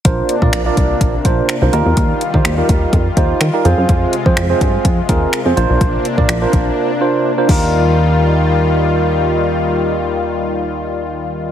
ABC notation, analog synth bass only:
X:1
M:4/4
L:1/16
Q:1/4=125
K:Eb
V:1 name="Analog synth bass" clef=bass
B,,,2 z B,, B,,,2 C,,2 B,,,2 B,,,2 z C,, E,, _F,, | E,,2 z E, E,,2 E,,2 F,,2 E,,2 E, z F,, _G,, | F,,2 z F, F,,2 G,,2 F,,2 E,,2 z F,, B,,, _C,, | B,,,2 z B,, B,,,2 B,,,2 z6 E,,2- |
E,,16- | E,,16 |]